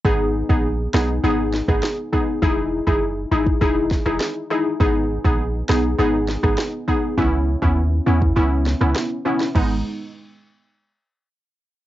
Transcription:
<<
  \new Staff \with { instrumentName = "Synth pluck" } { \time 4/4 \key gis \minor \tempo 4 = 101 <b dis' gis'>8. <b dis' gis'>16 r8 <b dis' gis'>16 r16 <b dis' gis'>8. <b dis' gis'>16 r8 <b dis' gis'>16 r16 | <dis' e' gis'>8. <dis' e' gis'>16 r8 <dis' e' gis'>16 r16 <dis' e' gis'>8. <dis' e' gis'>16 r8 <dis' e' gis'>16 r16 | <b dis' gis'>8. <b dis' gis'>16 r8 <b dis' gis'>16 r16 <b dis' gis'>8. <b dis' gis'>16 r8 <b dis' gis'>16 r16 | <b cis' e'>8. <b cis' e'>16 r8 <b cis' e'>16 r16 <b cis' e'>8. <b cis' e'>16 r8 <b cis' e'>16 r16 |
<gis b dis'>8 r2. r8 | }
  \new Staff \with { instrumentName = "Sub bass" } { \clef bass \time 4/4 \key gis \minor gis,,8. ais,,8. b,,8 gis,,8. gis,,16 r4 | e,,8. fis,,8. gis,,8 e,,8. e,,16 r4 | gis,,8. ais,,8. b,,8 gis,,8. gis,,16 r4 | cis,8. dis,8. e,8 cis,8. cis,16 r4 |
gis,,8 r2. r8 | }
  \new DrumStaff \with { instrumentName = "Drums" } \drummode { \time 4/4 bd8. bd16 r8 <ss sn>8 r8 sn16 <bd ss>16 <ss sn>8 bd8 | bd8. bd16 r8. bd16 bd8 <bd sn>16 ss16 <ss sn>4 | bd8. bd16 r8 <ss sn>8 r8 sn16 <bd ss>16 <ss sn>8 bd8 | bd8. bd16 r8. bd16 r8 sn16 ss16 <ss sn>8. sn16 |
<cymc bd>4 r4 r4 r4 | }
>>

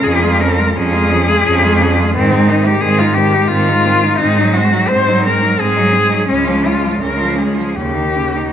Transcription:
<<
  \new Staff \with { instrumentName = "Cello" } { \time 3/4 \key aes \major \tempo 4 = 86 aes'8 bes'8 aes'2 | c'8 ees'16 g'16 aes'16 f'16 g'8 f'4 | ees'8 ges'8 c''8 bes'8 aes'4 | des'8 f'8 bes'8 aes'8 g'4 | }
  \new Staff \with { instrumentName = "Cello" } { \time 3/4 \key aes \major des'16 f'16 des'16 f'16 des'16 f'16 des'16 f'16 des'16 f'16 des'16 f'16 | c'16 ees'16 c'16 ees'16 c'16 ees'16 c'16 ees'16 c'16 ees'16 c'16 ees'16 | c'16 ees'16 c'16 ees'16 c'16 ees'16 c'16 ees'16 c'16 ees'16 c'16 ees'16 | des'16 f'16 des'16 f'16 des'16 f'16 des'16 f'16 des'16 ees'16 des'16 ees'16 | }
  \new Staff \with { instrumentName = "Cello" } { \clef bass \time 3/4 \key aes \major f16 aes16 f16 aes16 f16 aes16 f16 aes16 f16 aes16 f16 aes16 | ees16 aes16 ees16 aes16 ees16 aes16 ees16 aes16 ees16 aes16 ees16 aes16 | aes16 ges16 aes16 ges16 aes16 ges16 aes16 ges16 aes16 ges16 aes16 ges16 | aes16 f16 aes16 f16 aes16 f16 aes16 f16 des16 ees16 des16 ees16 | }
  \new Staff \with { instrumentName = "Cello" } { \clef bass \time 3/4 \key aes \major f,4 f,4 f,4 | aes,4 aes,4 aes,4 | aes,4 aes,4 aes,4 | des,4 des,4 ees,4 | }
>>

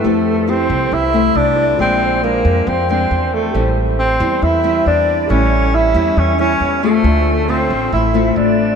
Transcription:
<<
  \new Staff \with { instrumentName = "Flute section" } { \time 4/4 \key f \major \tempo 4 = 137 a'4 c''4 e''4 d''4 | c''4 bes'4 c''8 c''4 a'8~ | a'8 r8 c''4 e''4 d''4 | cis''4 e''4 cis''8 cis''4 a'8~ |
a'4 c''4 e''4 d''4 | }
  \new Staff \with { instrumentName = "Tine electric piano" } { \time 4/4 \key f \major <e' g' a' c''>2.~ <e' g' a' c''>8 <e' g' a' d''>8 | <f' aes' c'' d''>1 | <g' a' c'' e''>1 | <g' a' cis'' e''>1 |
<f' a' c'' e''>2~ <f' a' c'' e''>8 <f' a' c'' e''>4. | }
  \new Staff \with { instrumentName = "Tenor saxophone" } { \time 4/4 \key f \major a4 c'4 e'4 d'4 | c'4 bes4 c'8 c'4 a8~ | a8 r8 c'4 e'4 d'4 | cis'4 e'4 cis'8 cis'4 a8~ |
a4 c'4 e'4 d'4 | }
  \new Staff \with { instrumentName = "Nylon-string guitar" } { \time 4/4 \key f \major << { <a e' g'>4 <a e' g'>4. <a e' g'>4. | <aes c' d'>4 <aes c' d'>4 r8 <aes c' d'>4. | <g c' e'>4 r8 <g c' e'>4 <g c' e'>4. | <g cis' e'>4. <g cis' e'>4 <g cis' e'>4 <a c' f'>8~ |
<a c' f'>4 <a c' f'>4 r8 <a c' f'>4. | } \\ { f2 c2 | bes,2 f2 | a,2 e2 | a,2 e2 |
d2 a,2 | } >> }
  \new Staff \with { instrumentName = "Upright bass" } { \clef bass \time 4/4 \key f \major f,4. c,8 c,4 c,4 | bes,,4. f,8 f,4 e,4 | a,,4. e,8 e,4 e,4 | a,,4. e,8 e,4 e,4 |
d,4. a,,8 a,,4 a,,4 | }
>>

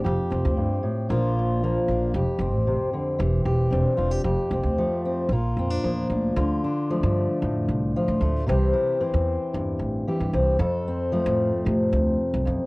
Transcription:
<<
  \new Staff \with { instrumentName = "Steel-string acoustic guitar" } { \time 4/4 \key f \major \tempo 4 = 113 << { g'8 c'4. <f bes d' f'>8 d'8 bes8 d'8 | g'8 c'4. g'8 g'8 d'8 f'16 g'16 | g'8 c'8 a8 c'8 f'8 c'16 d'16 bes8 d'8 | f'8 d'8 a2 f'8 a8 |
<e c' g'>8 e'8 c'2 g'8 c'8 | a'8 c'8 a2. | } \\ { f,4 g,8 a,8 bes,4 f4 | f,4 c8 d8 e4 c'4 | f,4 f4 bes,4 f4 | d4 f4 a,4 f4 |
c4 e4 g,4 e4 | f,4 f4 c4. f,8 | } >> }
  \new Staff \with { instrumentName = "Upright bass" } { \clef bass \time 4/4 \key f \major f,,16 r16 f,,16 d,8 r8. bes,,4. bes,,8 | f,,16 r16 f,,16 a,,8 r8. e,,8 e,,8 e,,16 r16 e,,8 | f,,16 r16 f,,16 d,8 r8. bes,,8 f,8 e,8 d,8 | d,8 r8. g,8 r16 f,8 c,8 r16 a,,16 d,8 |
c,8 r8. e,8 r16 e,8 a,,8 r16 g,16 c,8 | f,8 r8. a,8 r16 a,8 d,8 r16 c,16 ges,8 | }
>>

